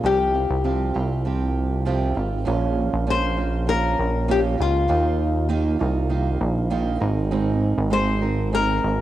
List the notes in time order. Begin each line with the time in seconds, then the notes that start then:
0.03 C2 C3 F3 C4 F4 G4
0.34 C4 F4 G4
0.50 C2
0.64 C3 F3 C4 F4 G4
0.94 C2 C4 F4 G4
1.25 F3 C4 F4 G4
1.85 C3 F3 C4 F4 G4
2.15 G#1 C4 F4 G4
2.45 A#1 A#2 F3 A#3 C#4 F4
2.94 A#1
3.07 A#2 F3 A#3 C#4 F4 C5
3.37 A#3 C#4 F4
3.67 F3 A#3 C#4 F4 A#4
3.99 A#1
4.28 A#2 F3 A#3 C#4 F4 G4
4.58 C#2 A#3 C#4 F4
4.88 D#2 D#3 A#3 D#4 F4
5.49 D#3 A#3 D#4 F4
5.79 C2 A#3 D#4 F4
6.09 D#3 A#3 D#4 F4
6.41 A#1
6.70 D#3 A#3 D#4 F4
7.00 G#1 C4 D#4 A#4
7.31 G#3 C4 D#4 A#4
7.78 G#1
7.90 G#3 C4 D#4 A#4 C5
8.21 C4 D#4 A#4
8.52 G#3 C4 D#4 A#4
8.84 G#1